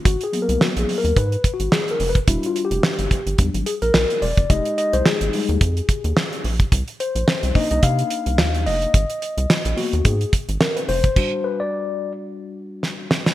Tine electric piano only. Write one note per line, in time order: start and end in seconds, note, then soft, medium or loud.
0.05 0.24 F#4 medium
0.24 0.41 G#4 medium
0.33 1.12 F#3 medium
0.33 1.12 A#3 medium
0.33 1.13 B3 medium
0.42 0.61 A#4 medium
0.61 0.69 F#4 medium
0.79 0.97 G#4 medium
0.98 1.17 A#4 medium
1.17 1.51 B4 loud
1.54 1.73 F#4 medium
1.72 1.91 G#4 medium
1.91 2.10 A#4 medium
2.09 2.18 B4 loud
2.27 3.07 G3 soft
2.27 3.08 D4 medium
2.27 2.47 E4 medium
2.27 3.07 F#4 medium
2.46 2.65 F4 medium
2.65 3.44 G4 loud
3.38 3.63 F#3 soft
3.38 3.64 G3 soft
3.38 3.64 D4 medium
3.66 3.73 G#4 loud
3.82 4.23 A#4 loud
4.22 4.51 D5 loud
4.50 5.32 G#3 soft
4.50 5.33 D#4 medium
4.50 6.68 G4 medium
4.50 4.77 D#5 loud
4.78 4.94 D#5 loud
4.93 5.06 C5 loud
5.06 6.40 G#4 medium
5.33 5.58 G3 medium
5.33 5.58 G#3 soft
5.33 5.59 D#4 medium
7.00 7.57 C5 loud
7.55 8.90 A#3 medium
7.55 8.90 D4 medium
7.55 8.90 D#4 medium
7.55 7.70 D#5 medium
7.71 7.84 D#5 medium
7.83 8.69 F5 loud
8.66 9.81 D#5 loud
9.77 10.15 A#3 medium
9.77 10.16 B3 soft
9.77 10.16 F#4 medium
10.05 10.31 G#4 medium
10.61 10.77 A#4 medium
10.77 10.82 B4 medium
10.89 11.46 C5 loud
11.16 13.34 G3 medium
11.16 13.34 D4 soft
11.16 13.34 F#4 medium
11.44 11.60 B4 medium
11.60 12.12 D5 loud